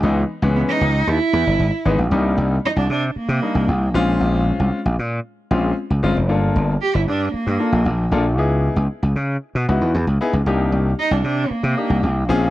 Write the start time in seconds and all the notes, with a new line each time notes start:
0.03 C#2 E3 G#3 B3 D#4
0.42 C#2 E3 G#3 B3 C#4
0.56 B3
0.69 D#4
0.81 C#2
1.07 D#2 E4
1.33 E2
1.47 G1
1.59 G#1
1.85 G#1 E3 G#3 B3 D#4
1.98 A#1
2.11 C2 G3 A#3 D4 D#4
2.37 C2
2.66 D#4
2.76 C2 D4
2.90 C3 D4
3.16 A#3, muted slap bass stroke
3.29 C3
3.42 G3 A#3 D4 D#4
3.55 C2
3.68 C2
3.94 A#1 G#3 C4 C#4 F4
4.20 A#1
4.59 C2
4.85 A#1
4.99 A#2
5.51 A#1 G#3 C4 C#4 F4
5.90 C#2
6.03 G1 G#3 C4 C#4 F4
6.16 F1
6.29 G1 A#3 D4 F4 A4
6.56 G1
6.81 G4
6.95 G1 E4
7.08 G2 D4
7.34 A#3, muted slap bass stroke
7.47 G2
7.59 A#3 D4 F4 A4
7.72 A#1
7.85 A#1
8.11 A#1 A#3 D4 F4 A4
8.37 C#2 B3 D#4 E4 G#4
8.76 C#2
9.03 C#2
9.16 C#3
9.55 B2
9.68 C#2 B3 D#4 E4 F#4
9.81 E2
9.94 E2
10.07 C#2
10.21 B3 D#4 E4 G#4
10.33 C#2
10.46 C2 A#3 D4 D#4 G4
10.72 C2
10.99 D#4
11.11 C2 D4
11.24 C3 D4
11.50 A#3, muted slap bass stroke
11.63 C3
11.77 A#3 D4 D#4 G4
11.90 C2
12.03 C2
12.29 A#1 C4 C#4 F4 G#4